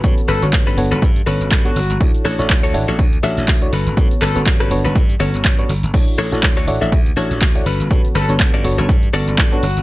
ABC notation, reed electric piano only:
X:1
M:4/4
L:1/16
Q:"Swing 16ths" 1/4=122
K:Glyd
V:1 name="Reed electric piano"
[D,B,FAc]3 [D,B,FAc]3 [B,DFAc]2 z2 [D,B,FAc]3 [B,DFAc] z2 | [DEFAc]3 [DEFAc]3 [DEFAc]2 z2 [DEFAc]3 [DEFAc] z2 | [D,B,FAc]3 [D,B,FAc]3 [B,DFAc]2 z2 [D,B,FAc]3 [B,DFAc] z2 | [DEFAc]3 [DEFAc]3 [DEFAc]2 z2 [DEFAc]3 [DEFAc] z2 |
[D,B,FAc]3 [D,B,FAc]3 [B,DFAc]2 z2 [D,B,FAc']3 [B,DFAc] z2 |]